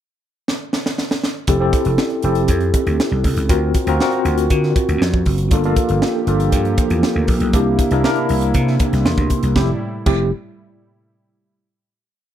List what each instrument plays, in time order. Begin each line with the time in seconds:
0.48 snare
0.73 snare
0.86 snare
0.98 snare
1.11 snare
1.23 snare
1.47 slap bass F1, tine electric piano C4 E4 G4 A4, kick, closed hi-hat
1.60 tine electric piano C4 E4 G4 A4
1.73 kick, closed hi-hat
1.85 slap bass F1, closed hi-hat
1.98 snare
2.10 closed hi-hat
2.22 slap bass F1, tine electric piano C4 E4 G4 A4, closed hi-hat
2.35 closed hi-hat
2.48 slap bass F2, kick, closed hi-hat
2.61 closed hi-hat
2.74 kick, closed hi-hat
2.87 slap bass D2, closed hi-hat
3.00 snare
3.11 slap bass C2
3.24 slap bass C2, kick, open hi-hat
3.37 slap bass C#2, closed hi-hat
3.49 slap bass D2, tine electric piano C4 F4 F#4 A#4, kick, closed hi-hat
3.74 kick, closed hi-hat
3.87 slap bass D2, tine electric piano C4 F4 F#4 A#4, closed hi-hat
4.00 tine electric piano C4 F4 F#4 A#4, snare
4.12 closed hi-hat
4.25 slap bass D2, closed hi-hat
4.38 closed hi-hat
4.50 slap bass D3, kick, closed hi-hat
4.63 snare
4.76 kick, closed hi-hat
4.89 slap bass D2, closed hi-hat
5.01 slap bass F2, snare
5.14 kick
5.26 slap bass F#1, kick, open hi-hat
5.38 closed hi-hat
5.51 slap bass G1, analog synth pad F3 A#3 G4, tine electric piano A#3 D4 F4 A4, kick, closed hi-hat
5.64 tine electric piano A#3 D4 F4 A4, closed hi-hat
5.76 kick, closed hi-hat
5.89 slap bass G1, closed hi-hat
6.02 snare
6.27 slap bass G1, tine electric piano A#3 D4 F4 A4, closed hi-hat
6.40 closed hi-hat
6.52 slap bass G2, kick, closed hi-hat
6.65 closed hi-hat
6.78 kick, closed hi-hat
6.90 slap bass E2, closed hi-hat
7.03 snare
7.15 slap bass D2
7.28 slap bass A#1, kick, open hi-hat
7.40 slap bass B1, closed hi-hat
7.53 slap bass C2, analog synth pad C3 E4, tine electric piano A#3 D4 E4 G4, kick, closed hi-hat
7.79 kick, closed hi-hat
7.91 slap bass C2, tine electric piano A#3 D4 E4 A#4, closed hi-hat
8.04 tine electric piano A#3 D4 E4 A#4, snare
8.16 closed hi-hat
8.29 slap bass C2, open hi-hat
8.41 closed hi-hat
8.54 slap bass C3, kick, closed hi-hat
8.68 snare
8.80 kick, closed hi-hat
8.93 slap bass C2, snare, closed hi-hat
9.05 slap bass E2, tine electric piano C6, snare
9.17 slap bass D2, kick, closed hi-hat
9.30 kick, closed hi-hat
9.43 slap bass C2, closed hi-hat
9.55 slap bass F1, analog synth pad A2 G3 E4, tine electric piano A3 C4 E4 G4, kick, snare
10.06 slap bass F1, tine electric piano A3 C4 E4 G4, kick, crash